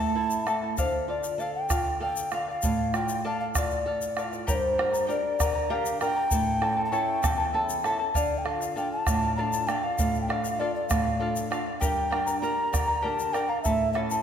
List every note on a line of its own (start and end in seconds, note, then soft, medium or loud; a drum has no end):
0.00 0.74 A2 medium
0.00 0.15 A3 medium
0.00 0.14 E4 soft
0.00 0.15 A4 soft
0.00 0.15 A5 medium
0.00 0.51 A5 loud
0.15 0.46 E4 medium
0.15 0.46 A4 medium
0.15 0.45 E5 medium
0.15 0.47 A5 medium
0.31 shaker medium
0.46 0.76 A3 medium
0.46 0.62 E4 medium
0.46 0.62 A4 medium
0.46 0.62 E5 medium
0.46 0.61 A5 medium
0.46 bombo rim medium
0.46 shaker soft
0.62 0.77 E4 medium
0.62 0.76 A4 soft
0.62 0.78 A5 medium
0.77 2.59 D3 medium
0.77 1.07 A4 medium
0.77 1.07 C5 medium
0.77 1.08 D5 medium
0.77 1.08 F5 medium
0.77 bombo low medium
0.77 shaker medium
1.08 1.38 F4 medium
1.08 1.24 A4 medium
1.08 1.24 D5 medium
1.08 1.41 D5 medium
1.08 1.22 F5 medium
1.23 1.39 D5 soft
1.23 1.39 F5 medium
1.23 shaker medium
1.38 1.68 A4 medium
1.38 1.67 A4 medium
1.38 1.69 D5 medium
1.38 1.54 F5 medium
1.38 1.69 F5 medium
1.38 shaker soft
1.55 1.98 G5 loud
1.69 2.00 F4 medium
1.69 1.85 A4 medium
1.69 1.85 D5 medium
1.69 1.83 F5 medium
1.69 bombo rim medium
1.69 bombo low medium
1.69 shaker loud
1.84 2.00 D5 soft
1.84 2.00 F5 medium
2.00 2.31 A4 medium
2.00 2.31 D5 medium
2.00 2.32 F5 medium
2.00 2.30 G5 medium
2.16 shaker medium
2.31 2.62 F4 medium
2.31 2.47 A4 medium
2.31 2.48 D5 medium
2.31 2.47 F5 medium
2.31 2.48 F5 medium
2.31 bombo rim medium
2.31 shaker soft
2.48 2.63 D5 soft
2.48 2.63 F5 medium
2.48 2.97 F5 loud
2.62 4.43 A2 medium
2.62 2.93 A4 medium
2.62 2.95 D5 medium
2.62 2.95 F5 medium
2.62 bombo rim soft
2.62 bombo low medium
2.62 shaker medium
2.79 bombo rim soft
2.94 3.23 F4 medium
2.94 3.09 A4 medium
2.94 3.10 D5 medium
2.94 3.08 F5 medium
2.94 3.25 G5 medium
2.94 bombo rim medium
2.94 shaker soft
3.09 3.24 D5 soft
3.09 3.25 F5 soft
3.09 bombo rim soft
3.09 shaker medium
3.25 3.54 A4 medium
3.25 3.55 A4 medium
3.25 3.55 D5 medium
3.25 3.56 F5 medium
3.25 3.40 A5 medium
3.40 3.46 F5 medium
3.55 3.85 F4 medium
3.55 3.71 A4 medium
3.55 4.21 D5 medium
3.55 3.72 D5 medium
3.55 3.70 F5 medium
3.55 bombo rim medium
3.55 bombo low medium
3.55 shaker medium
3.71 3.86 D5 soft
3.71 3.86 F5 soft
3.71 shaker soft
3.86 4.16 A4 medium
3.86 4.17 D5 medium
3.86 4.17 F5 medium
4.02 shaker medium
4.17 4.46 F4 medium
4.17 4.32 A4 medium
4.17 4.32 D5 medium
4.17 4.30 F5 medium
4.17 bombo rim medium
4.17 shaker soft
4.31 4.46 D5 soft
4.31 4.47 F5 medium
4.31 bombo rim soft
4.31 shaker soft
4.47 5.07 G2 medium
4.47 4.78 G4 medium
4.47 4.77 A#4 medium
4.47 4.55 C#5 medium
4.47 4.78 D5 medium
4.47 4.77 G5 medium
4.47 4.78 A#5 medium
4.47 bombo low medium
4.47 shaker medium
4.54 5.06 C5 medium
4.78 5.07 D4 medium
4.78 5.08 G4 soft
4.78 4.93 A#4 medium
4.78 5.08 A#4 medium
4.78 4.92 D5 medium
4.78 4.93 G5 medium
4.78 4.92 A#5 medium
4.78 bombo rim medium
4.93 5.07 A#4 soft
4.93 5.07 D5 soft
4.93 5.07 A#5 soft
4.93 shaker medium
5.07 5.58 D4 medium
5.07 5.58 G4 soft
5.07 5.39 A#4 medium
5.07 5.58 A#4 medium
5.07 5.39 D5 medium
5.07 5.72 D5 medium
5.07 5.38 G5 medium
5.07 5.39 A#5 medium
5.07 shaker soft
5.39 5.99 D3 medium
5.39 5.55 A#4 medium
5.39 5.54 D5 medium
5.39 5.55 G5 medium
5.39 5.53 A#5 medium
5.39 bombo rim medium
5.39 bombo low medium
5.39 shaker loud
5.55 5.69 A#4 soft
5.55 5.69 D5 soft
5.55 5.70 A#5 medium
5.69 6.00 D4 medium
5.69 6.00 G4 soft
5.69 6.01 G4 medium
5.69 6.00 A#4 medium
5.69 6.00 D5 medium
5.69 6.00 F5 medium
5.69 5.99 G5 medium
5.69 6.00 A#5 medium
5.86 shaker medium
6.00 6.25 D4 soft
6.00 6.26 G4 soft
6.00 6.16 A#4 medium
6.00 6.26 A#4 medium
6.00 6.15 D5 medium
6.00 6.16 G5 medium
6.00 6.82 G5 loud
6.00 6.14 A#5 medium
6.00 bombo rim medium
6.00 shaker soft
6.16 6.31 A#4 soft
6.16 6.31 D5 soft
6.16 6.31 A#5 medium
6.31 6.91 A2 medium
6.31 6.60 E4 medium
6.31 6.61 A4 medium
6.31 6.60 E5 medium
6.31 6.61 A5 medium
6.31 bombo low medium
6.31 shaker medium
6.60 6.91 C#4 soft
6.60 6.91 E4 soft
6.60 6.76 E4 medium
6.60 6.92 A4 medium
6.60 6.76 A4 medium
6.60 6.77 E5 medium
6.60 6.75 A5 medium
6.60 bombo rim medium
6.76 6.91 E4 soft
6.76 6.92 A4 medium
6.76 6.92 A5 soft
6.85 6.94 A5 medium
6.92 7.41 C#4 medium
6.92 7.41 E4 soft
6.92 7.22 E4 medium
6.92 7.22 A4 medium
6.92 7.42 A4 medium
6.92 7.23 C#5 medium
6.92 7.21 E5 medium
6.92 7.84 G5 loud
6.92 7.22 A5 medium
6.92 shaker soft
7.22 7.83 E2 medium
7.22 7.38 E4 medium
7.22 7.37 A4 medium
7.22 7.38 E5 medium
7.22 7.37 A5 medium
7.22 bombo rim medium
7.22 bombo low medium
7.22 shaker loud
7.38 7.52 E4 soft
7.38 7.53 A4 medium
7.38 7.54 A5 medium
7.53 7.83 C#4 soft
7.53 7.83 E4 medium
7.53 7.84 E4 soft
7.53 7.84 A4 medium
7.53 7.83 E5 medium
7.53 7.84 A5 medium
7.69 shaker medium
7.84 8.09 C#4 soft
7.84 7.99 E4 medium
7.84 8.09 E4 soft
7.84 7.98 A4 medium
7.84 8.09 A4 medium
7.84 8.00 E5 medium
7.84 7.98 A5 medium
7.84 bombo rim medium
7.84 shaker soft
7.99 8.14 E4 soft
7.99 8.13 A4 soft
7.99 8.15 A5 medium
8.14 8.74 D3 medium
8.14 8.43 A4 medium
8.14 8.44 D5 medium
8.14 8.40 D5 loud
8.14 8.45 F5 medium
8.14 bombo low medium
8.14 shaker medium
8.38 8.47 G5 medium
8.44 8.75 D4 soft
8.44 8.76 F4 soft
8.44 8.60 A4 medium
8.44 8.75 A4 soft
8.44 8.61 D5 medium
8.44 8.76 F5 medium
8.44 8.59 F5 medium
8.44 bombo rim medium
8.60 8.75 D5 soft
8.60 8.76 F5 medium
8.60 shaker medium
8.76 9.25 D4 soft
8.76 9.25 F4 soft
8.76 9.05 A4 medium
8.76 9.25 A4 medium
8.76 9.06 D5 medium
8.76 9.06 F5 medium
8.76 8.91 G5 medium
8.76 shaker soft
8.92 9.35 A5 loud
9.06 9.66 A2 medium
9.06 9.22 A4 medium
9.06 9.22 D5 medium
9.06 9.22 F5 medium
9.06 bombo rim medium
9.06 bombo low medium
9.06 shaker medium
9.23 9.37 D5 soft
9.23 9.38 F5 medium
9.36 9.67 D4 medium
9.36 9.67 F4 soft
9.36 9.68 A4 medium
9.36 9.67 A4 medium
9.36 9.68 D5 medium
9.36 9.69 F5 medium
9.36 9.42 A#5 medium
9.41 9.69 A5 medium
9.53 shaker medium
9.67 10.17 D4 soft
9.67 10.17 F4 soft
9.67 9.83 A4 medium
9.67 10.17 A4 medium
9.67 9.84 D5 medium
9.67 9.82 F5 medium
9.67 9.85 G5 medium
9.67 bombo rim medium
9.67 shaker soft
9.83 9.98 D5 soft
9.83 9.99 F5 medium
9.83 10.21 F5 medium
9.98 10.58 A2 medium
9.98 10.28 A4 medium
9.98 10.29 D5 medium
9.98 10.30 F5 medium
9.98 bombo low medium
9.98 shaker medium
10.15 shaker soft
10.22 10.29 G5 medium
10.28 10.58 D4 soft
10.28 10.58 F4 soft
10.28 10.58 A4 medium
10.28 10.45 A4 medium
10.28 10.44 D5 medium
10.28 10.42 F5 medium
10.28 10.34 G5 medium
10.28 bombo rim medium
10.33 10.61 F5 medium
10.44 10.59 D5 soft
10.44 10.59 F5 medium
10.44 bombo rim soft
10.44 shaker medium
10.59 11.08 D4 soft
10.59 11.08 F4 soft
10.59 11.08 A4 medium
10.59 10.89 A4 medium
10.59 10.74 D5 medium
10.59 10.90 D5 medium
10.59 10.91 F5 medium
10.75 10.88 D5 medium
10.88 11.49 A2 medium
10.88 11.06 A4 medium
10.88 11.05 D5 medium
10.88 11.54 F5 loud
10.88 11.04 F5 medium
10.88 bombo rim medium
10.88 bombo low medium
10.88 shaker medium
11.05 11.20 D5 soft
11.05 11.20 F5 soft
11.05 bombo rim soft
11.20 11.49 D4 medium
11.20 11.49 F4 soft
11.20 11.50 A4 medium
11.20 11.49 A4 medium
11.20 11.50 D5 medium
11.20 11.51 F5 medium
11.36 bombo rim soft
11.36 shaker medium
11.50 11.75 D4 soft
11.50 11.75 F4 soft
11.50 11.66 A4 medium
11.50 11.75 A4 medium
11.50 11.66 D5 medium
11.50 11.65 F5 medium
11.50 bombo rim medium
11.50 shaker soft
11.66 11.80 D5 soft
11.66 11.81 F5 soft
11.66 bombo rim soft
11.80 12.40 G2 medium
11.80 12.12 G4 medium
11.80 12.09 A#4 medium
11.80 12.09 D5 medium
11.80 12.38 G5 loud
11.80 12.09 G5 medium
11.80 12.10 A#5 medium
11.80 bombo low medium
11.80 shaker loud
12.10 12.41 D4 soft
12.10 12.41 G4 soft
12.10 12.27 A#4 medium
12.10 12.42 A#4 soft
12.10 12.26 D5 medium
12.10 12.26 G5 medium
12.10 12.25 A#5 medium
12.10 bombo rim medium
12.26 12.41 A#4 soft
12.26 12.42 D5 soft
12.26 12.42 A#5 medium
12.26 shaker medium
12.42 12.91 D4 soft
12.42 12.91 G4 soft
12.42 12.71 A#4 medium
12.42 12.92 A#4 medium
12.42 12.72 D5 medium
12.42 12.71 G5 medium
12.42 13.04 A#5 loud
12.42 12.73 A#5 medium
12.42 shaker soft
12.73 13.32 D3 medium
12.73 12.88 A#4 medium
12.73 12.87 D5 medium
12.73 12.88 G5 medium
12.73 12.86 A#5 medium
12.73 bombo rim medium
12.73 bombo low medium
12.73 shaker medium
12.87 13.01 A#4 soft
12.87 13.01 D5 soft
12.87 13.03 A#5 soft
13.02 13.34 D4 medium
13.02 13.33 G4 medium
13.02 13.34 G4 soft
13.02 13.32 A#4 medium
13.02 13.34 A#4 medium
13.02 13.33 D5 medium
13.02 13.32 G5 medium
13.02 13.34 A5 medium
13.19 shaker medium
13.33 13.59 D4 soft
13.33 13.59 G4 soft
13.33 13.49 A#4 medium
13.33 13.59 A#4 medium
13.33 13.48 D5 medium
13.33 13.51 G5 loud
13.33 13.49 G5 medium
13.33 13.48 A#5 medium
13.33 bombo rim medium
13.33 shaker soft
13.49 13.65 A#4 soft
13.49 13.64 D5 medium
13.49 13.62 F5 medium
13.49 13.64 A#5 medium
13.62 14.22 A2 medium
13.62 13.94 E4 medium
13.62 13.95 A4 medium
13.62 13.91 E5 loud
13.62 13.93 E5 medium
13.62 13.95 A5 medium
13.62 bombo low medium
13.62 shaker medium
13.93 14.22 C#4 soft
13.93 14.10 E4 medium
13.93 14.22 E4 soft
13.93 14.10 A4 medium
13.93 14.22 A4 medium
13.93 14.00 E5 medium
13.93 14.10 E5 medium
13.93 14.10 A5 medium
13.93 bombo rim medium
14.11 14.22 E4 soft
14.11 14.22 A4 soft
14.11 14.22 A5 soft
14.11 shaker medium